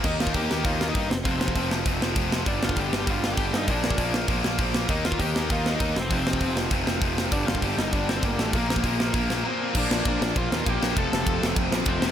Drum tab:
CC |x---------------|----------------|----------------|----------------|
RD |----------------|----------------|----------------|----------------|
HH |----o---o---o---|o---o---o---o---|o---o---o---o---|o---o---o---o---|
SD |--o---o---o---o-|--o---o---o---o-|--o---o---o---o-|--o---o---o---o-|
BD |o--oo---o---o---|o--oo---o---o---|o--oo---o---o---|o--oo---o---o---|

CC |----------------|----------------|----------------|----------------|
RD |----------------|----------------|----------------|----------------|
HH |o---o---o---o---|o---o---o---o---|o---o---o---o---|o---o---o-------|
SD |--o---o---o---o-|--o---o---o---o-|--o---o---o---o-|--o---o---o-----|
BD |o--oo---o---o---|o--oo---o---o---|o--oo---o---o---|o--oo---o-------|

CC |x---------------|----------------|
RD |----x---x---x---|x---x---x---x---|
HH |----------------|----------------|
SD |--o---o---o---o-|--o---o---o---o-|
BD |o---o---o---o---|o---o---o---o---|